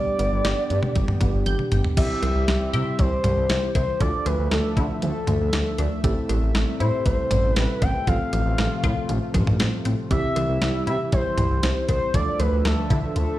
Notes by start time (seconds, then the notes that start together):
Already playing: D3 G3 B3 D4 G4 D5
0.19 G1 B3, closed hi-hat
0.32 G1
0.45 G1 G4, snare, closed hi-hat
0.70 G2, closed hi-hat
0.83 mid tom
0.95 G1 G3, kick, closed hi-hat
1.08 mid tom
1.21 G1 B3 D4 G4, kick, closed hi-hat, mid tom
1.34 G1
1.46 G1 G6, closed hi-hat, high tom
1.59 mid tom
1.72 G1 G5, closed hi-hat, mid tom
1.84 floor tom
1.97 C2 E3 G3 C4 E4 G4 E5, kick, closed hi-hat, crash
2.23 C2 G3, closed hi-hat, cowbell
2.35 C2
2.48 C2 C4, snare, closed hi-hat
2.73 C3 G4 E5, closed hi-hat
2.99 C2 G3 C5, kick, closed hi-hat
3.24 C2 G3, closed hi-hat, mid tom
3.37 C2
3.49 C2 E4, snare, closed hi-hat
3.75 C2 E4 C5, kick, closed hi-hat, cowbell
4.00 D2 D3 F3 A3 D4 F4 A4 D5 E5, kick, closed hi-hat
4.26 D2 F3 B4, closed hi-hat, cowbell
4.39 D2
4.51 D2 A3 A4, snare, closed hi-hat
4.77 D3 E4, kick, closed hi-hat
5.02 D2 F3 A4, closed hi-hat
5.27 D2 F3, closed hi-hat, mid tom
5.40 D2
5.53 D2 D4, snare, closed hi-hat
5.78 D2 D4, closed hi-hat, cowbell
6.04 A1 C3 G3 C4 E4 A4, kick, closed hi-hat
6.29 A1 G3, closed hi-hat, cowbell
6.42 A1
6.55 A1 A3, snare, closed hi-hat
6.80 A2 E4 C5, closed hi-hat
7.06 A1 G3 C5, kick, closed hi-hat
7.31 A1 G3, closed hi-hat, mid tom
7.44 A1
7.56 A1 C4 B4, snare, closed hi-hat
7.82 A1 C4 G5, kick, closed hi-hat, cowbell
8.07 A1 C3 F3 A3 C4 F4 A4 F5, kick, closed hi-hat
8.33 A1 F3, closed hi-hat
8.46 A1
8.58 A1 A3, snare, closed hi-hat
8.84 A2 F4, kick, closed hi-hat, cowbell
9.09 A1 F3, closed hi-hat
9.34 A1 F3, kick, closed hi-hat, mid tom, cowbell
9.47 A1, mid tom
9.60 A1 C4, snare, closed hi-hat
9.85 A1 C4, closed hi-hat
10.11 C2 E3 G3 C4 E4 G4 E5, kick, closed hi-hat
10.36 C2 E3, closed hi-hat, cowbell
10.49 C2
10.62 C2 G3, snare, closed hi-hat
10.87 C3 E4 E5, closed hi-hat
11.12 C2 E3 C5, kick, closed hi-hat
11.38 C2 E3, closed hi-hat, mid tom
11.51 C2
11.63 C2 C4, snare, closed hi-hat
11.89 C2 C4 C5, kick, closed hi-hat, cowbell
12.14 D2 D3 F3 A3 D4 F4 A4 D5 E5, kick, closed hi-hat
12.40 D2 F3 B4, closed hi-hat, cowbell
12.52 D2
12.65 D2 A3 A4, snare, closed hi-hat
12.90 D3 E4, kick, closed hi-hat
13.16 D2 F3 A4, closed hi-hat